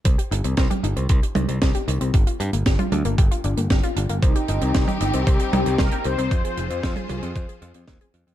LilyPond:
<<
  \new Staff \with { instrumentName = "Analog polysynth" } { \time 4/4 \key c \minor \tempo 4 = 115 r1 | r1 | ees'2 g'4 bes'8 c''8~ | c''2~ c''8 r4. | }
  \new Staff \with { instrumentName = "String section" } { \time 4/4 \key c \minor r1 | r1 | <c' ees' g'>1 | <f f' aes' c''>1 | }
  \new Staff \with { instrumentName = "Synth arpeggio sound" } { \time 4/4 \key c \minor c''16 g'16 ees'16 c'16 c''16 g'16 ees'16 c'16 c''16 g'16 ees'16 c'16 c''16 g'16 ees'16 c'16 | g'16 f'16 d'16 bes16 g'16 f'16 d'16 bes16 g'16 f'16 d'16 bes16 g'16 f'16 d'16 bes16 | c''16 g'16 ees'16 c'16 c''16 g'16 ees'16 c'16 c''16 g'16 ees'16 c'16 c''16 g'16 ees'16 c'16 | c''16 aes'16 f'16 c'16 c''16 aes'16 f'16 c'16 c''16 aes'16 f'16 c'16 c''16 aes'16 f'16 c'16 | }
  \new Staff \with { instrumentName = "Picked electric bass" } { \clef bass \time 4/4 \key c \minor c,16 r16 g,,16 c,16 c,16 r16 g,,16 c,16 c,16 r16 c,16 c,16 c,16 r16 c,16 c,16 | g,,16 r16 g,16 g,,16 g,,16 r16 d,16 g,,16 g,,16 r16 g,,16 g,,16 g,,16 r16 g,,16 g,,16 | c,16 r16 g,,16 c,16 c,16 r16 g,,16 c,16 c,16 r16 c,16 c,16 c,16 r16 c,16 c,16 | f,16 r16 f,,16 f,16 f,16 r16 c,16 f,16 f,16 r16 f,16 f,16 ees,16 r16 f,16 f,16 | }
  \new DrumStaff \with { instrumentName = "Drums" } \drummode { \time 4/4 <hh bd>16 hh16 hh16 hh16 <hh bd sn>16 <hh tommh>16 hh16 hh16 <hh bd>16 hh16 <hh tommh>16 hh16 <hh bd sn>16 hh16 hh16 hh16 | <hh bd>16 hh16 hh16 hh16 <hh bd sn>16 <hh tommh>16 <hh tommh>16 hh16 <hh bd>16 hh16 hh16 hh16 <hh bd sn>16 hh16 hh16 hh16 | <hh bd>16 hh16 hh16 hh16 <hh bd sn>16 <hh tommh>16 hh16 hh16 <hh bd>16 hh16 <hh tommh>16 hh16 <hh bd sn>16 hh16 hh16 hh16 | <hh bd>16 hh16 hh16 hh16 <hh bd sn>16 <hh tommh>16 <hh tommh>16 hh16 <hh bd>16 hh16 hh16 hh16 <hh bd sn>16 hh16 hh16 hh16 | }
>>